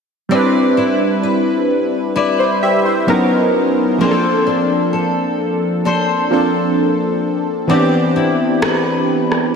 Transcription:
0.29 G3 C4 D4 D5
0.33 E4 B4
0.77 E4
1.23 B4
2.16 E4 B4 D5
2.39 E4 C5
2.63 G4 E5
2.85 E4 C5
3.07 F#3 B3 C#4 D#4 A#4
3.98 F3 A#3 C4 C5
4.03 D4 G#4
4.11 A4
4.47 D4
4.93 A4
5.85 D4 A4 C5
6.30 F3 A#3 C4 D4 A4
7.67 E3 B3 C4 D5
7.72 D4 G4
8.16 E4
8.62 B4, cross-stick
9.32 cross-stick

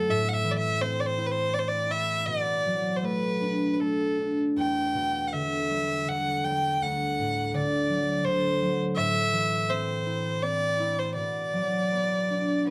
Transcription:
Already playing: F#2 D3 F#3 A3 A4
0.09 A2 E5
0.29 F#5
0.34 E5
0.44 E3
0.51 D5
0.56 E5
0.81 C4 C5
1.01 D5
1.07 C5
1.18 E4
1.26 B4
1.31 C5
1.53 C4 D5
1.59 C5
1.68 D5
1.89 E4 E5
2.26 B2 D5
2.65 F#3
2.96 C5
3.02 A3 B4
3.41 D4
3.73 B4
3.79 A3 A4
4.19 D4
4.56 E2 G5
4.94 B2
5.28 F#5
5.33 D3 E5
5.71 G3
6.07 D3 F#5
6.44 G3 G5
6.81 D2 F#5
7.19 A2
7.53 D3 D5
7.89 F#3
8.25 D3 C5
8.62 F#3
8.96 A2 E5
9.32 E3
9.69 C4 C5
10.06 E4
10.42 C4 D5
10.80 E4
10.99 C5
11.15 B2 D5
11.53 F#3
11.92 B3
12.30 D4

